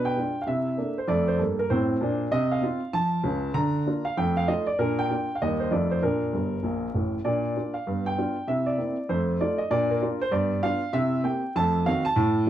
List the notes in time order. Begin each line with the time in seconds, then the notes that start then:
Already playing: B2 D4 B4
0.05 G5
0.16 G#3 D4 F4
0.42 F5
0.47 C3 E4 E5
0.77 A#3 D4 A4
0.98 C5
1.08 F2 A3 D5
1.28 C5
1.39 G2 A#3 A4
1.59 A#4
1.70 A2 C4 C5
2.01 A#2 D4
2.31 C3 D#5
2.51 F5
2.62 C4 D#4 F4
2.93 F3 A5
3.23 C#2 C#3
3.54 D3 A#5
3.86 A#3 D4 F4
4.05 F5
4.17 F2 A3 G5
4.37 F5
4.47 A3 D#4 F4 D#5
4.67 D5
4.79 A#2 D4 A#4
4.99 G5
5.10 A#3 D4 F4
5.35 F5
5.42 D#2 G3 A#3 D#4 G4 D#5
5.60 C5
5.71 F2 A3 D#4 F4 D5
5.91 C5
6.03 A#2 D4 A#4
6.33 G1 G2
6.63 A#1 A#2
6.94 A1 A2
7.25 A#2 D4 D5
7.56 A#3 D4 F4
7.74 F5
7.87 G2 B3
8.06 G5
8.18 B3 D4 F4
8.47 C3 E4 E5
8.66 D5
8.78 A#3 C4 E4
9.09 F2 A3 C5
9.40 A3 D#4 F4 D5
9.58 D#5
9.71 A#2 D4 D5
9.90 A#4
10.01 A#3 D4 F4
10.21 C5
10.31 G2 B3 D5
10.63 B3 D4 F4 F5
10.93 C3 E4 E5
11.23 A#3 C4 G4 G5
11.56 F2 A3 A5
11.86 D#3 C4 F#4 F5
12.05 A5
12.16 A2
12.46 F3 C4